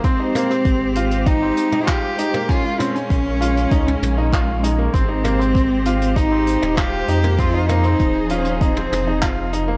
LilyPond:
<<
  \new Staff \with { instrumentName = "String section" } { \time 4/4 \key aes \major \tempo 4 = 98 << { <g' c''>1 | <bes des'>1 | <g' c''>1 | <f ees' aes'>1 | } \\ { aes1~ | aes1~ | aes1 | r1 | } >> }
  \new Staff \with { instrumentName = "Cello" } { \time 4/4 \key aes \major c'2 ees'4 g'4 | f'8 des'2. r8 | c'2 ees'4 g'4 | f'8 ees'4 des'8 c'4. r8 | }
  \new Staff \with { instrumentName = "Upright piano" } { \time 4/4 \key aes \major c'16 ees'16 bes16 c'8 r16 f'8 ees'16 c'8 ees'16 f'8 ees'16 bes16 | des'16 f'16 c'16 des'8 r16 f'8 ees'16 des'8 ees'16 f'8 ees'16 bes16 | c'16 ees'16 bes16 c'8 r16 f'8 ees'16 c'8 ees'16 f'8 ees'16 bes16 | c'16 ees'16 bes16 c'8 r16 f'8 ees'16 c'8 ees'16 f'8 ees'16 bes16 | }
  \new Staff \with { instrumentName = "Sub bass" } { \clef bass \time 4/4 \key aes \major r4 aes,,4. r4. | r4 bes,,4 des,8 bes,,4. | aes,,2~ aes,,8. ees,,8. f,8~ | f,4 ees,,4. f,,4. | }
  \new DrumStaff \with { instrumentName = "Drums" } \drummode { \time 4/4 <hh bd>8 <hh toml>16 hh16 <hh bd>8 hh16 hh16 <hh bd>8 hh16 toml16 <hc hh bd>8 hh16 toml16 | <hh bd>8 <hh toml>16 hh16 <hh bd>8 hh16 hh16 <hh bd>16 toml16 <hh toml>8 <hc hh bd>8 hh8 | <hh bd>8 <hh toml>16 hh16 <hh bd>8 hh16 hh16 <hh bd>8 hh16 toml16 <hc hh bd>8 hh16 toml16 | <hh bd>8 <hh toml>16 hh16 <hh bd>8 hh16 hh16 <hh bd>16 toml16 <hh toml>8 <hc hh bd>8 hh8 | }
>>